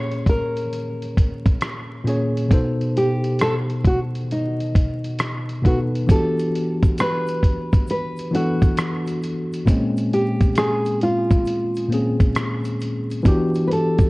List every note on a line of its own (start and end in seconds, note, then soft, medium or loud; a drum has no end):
0.00 0.63 A#2 medium
0.00 0.63 A#3 medium
0.00 0.64 C#4 medium
0.00 0.65 G#4 medium
0.00 0.29 C#5 loud
0.00 0.65 C#5 medium
0.11 closed hi-hat soft
0.26 2.03 A#4 medium
0.26 kick medium
0.26 closed hi-hat soft
0.57 closed hi-hat soft
0.73 closed hi-hat medium
1.02 closed hi-hat soft
1.17 kick medium
1.17 closed hi-hat medium
1.45 kick medium
1.45 closed hi-hat soft
1.61 cross-stick loud
1.61 closed hi-hat medium
2.04 2.48 A#2 medium
2.04 2.48 A#3 medium
2.04 2.49 C#4 medium
2.04 2.50 G#4 medium
2.04 closed hi-hat medium
2.09 2.50 C#5 medium
2.37 closed hi-hat soft
2.49 4.21 B2 medium
2.49 4.22 B3 medium
2.49 4.22 D#4 medium
2.49 4.23 A4 medium
2.49 kick loud
2.49 closed hi-hat medium
2.54 4.24 C5 medium
2.81 closed hi-hat soft
2.97 3.42 G4 medium
2.97 closed hi-hat medium
3.24 closed hi-hat soft
3.39 3.54 A4 medium
3.39 cross-stick medium
3.39 closed hi-hat medium
3.70 closed hi-hat soft
3.84 3.99 F#4 medium
3.84 kick medium
3.84 closed hi-hat medium
4.15 closed hi-hat soft
4.31 5.61 D#4 medium
4.31 closed hi-hat medium
4.60 closed hi-hat soft
4.75 kick medium
4.75 closed hi-hat medium
5.04 closed hi-hat soft
5.19 cross-stick loud
5.19 closed hi-hat medium
5.49 closed hi-hat soft
5.62 6.06 B2 medium
5.62 6.07 B3 medium
5.62 6.07 D#4 medium
5.62 6.08 A4 medium
5.62 kick medium
5.62 closed hi-hat medium
5.66 5.78 F#4 medium
5.66 6.09 B4 medium
5.95 closed hi-hat soft
6.07 7.79 E3 medium
6.07 7.80 B3 medium
6.07 7.80 D4 medium
6.07 7.81 F#4 medium
6.07 kick loud
6.07 closed hi-hat medium
6.07 shaker medium
6.11 7.82 G4 medium
6.11 7.00 A4 medium
6.39 closed hi-hat soft
6.39 shaker soft
6.55 closed hi-hat medium
6.83 kick medium
6.83 closed hi-hat soft
6.83 shaker soft
6.98 7.89 B4 loud
6.98 cross-stick loud
6.98 closed hi-hat medium
6.98 shaker medium
7.27 closed hi-hat soft
7.27 shaker medium
7.43 kick medium
7.43 closed hi-hat medium
7.73 kick medium
7.73 closed hi-hat soft
7.73 shaker soft
7.87 8.35 B4 medium
7.87 closed hi-hat medium
7.87 shaker medium
8.17 closed hi-hat medium
8.17 shaker soft
8.31 9.60 E3 medium
8.31 9.61 B3 medium
8.31 9.62 D4 medium
8.31 9.62 F#4 medium
8.31 9.19 F#4 medium
8.31 closed hi-hat medium
8.36 9.63 A4 medium
8.62 kick medium
8.62 closed hi-hat soft
8.62 shaker soft
8.77 cross-stick loud
8.77 closed hi-hat medium
8.77 shaker medium
9.06 closed hi-hat soft
9.06 shaker soft
9.22 closed hi-hat medium
9.22 shaker soft
9.52 closed hi-hat medium
9.52 shaker soft
9.65 11.37 A#2 medium
9.65 11.38 A#3 medium
9.65 11.39 C4 medium
9.65 11.39 C#4 medium
9.65 kick loud
9.65 closed hi-hat medium
9.65 shaker medium
9.70 11.40 G#3 medium
9.96 closed hi-hat soft
9.96 shaker medium
10.13 10.54 G4 medium
10.13 closed hi-hat medium
10.40 kick medium
10.40 closed hi-hat soft
10.40 shaker soft
10.55 11.03 G#4 loud
10.55 cross-stick loud
10.55 closed hi-hat medium
10.55 shaker medium
10.85 closed hi-hat soft
10.85 shaker soft
11.02 11.88 F4 medium
11.02 closed hi-hat medium
11.31 kick medium
11.31 closed hi-hat soft
11.31 shaker soft
11.45 closed hi-hat medium
11.45 shaker medium
11.74 closed hi-hat medium
11.74 shaker soft
11.89 13.18 A#2 medium
11.89 13.19 A#3 medium
11.89 13.20 C4 medium
11.89 13.20 C#4 medium
11.89 closed hi-hat medium
11.94 13.21 G#4 medium
12.20 kick medium
12.20 closed hi-hat soft
12.20 shaker soft
12.35 cross-stick loud
12.35 closed hi-hat medium
12.35 shaker medium
12.64 closed hi-hat soft
12.64 shaker soft
12.80 closed hi-hat medium
12.80 shaker soft
13.10 closed hi-hat soft
13.10 shaker soft
13.23 14.10 E3 medium
13.23 14.10 B3 medium
13.23 14.10 D4 medium
13.23 14.10 F#4 medium
13.23 kick loud
13.23 closed hi-hat medium
13.23 shaker medium
13.28 14.10 G4 loud
13.54 closed hi-hat soft
13.54 shaker medium
13.67 13.71 B4 medium
13.67 closed hi-hat medium
13.72 14.10 A4 medium
13.98 kick medium
13.98 closed hi-hat soft
13.98 shaker soft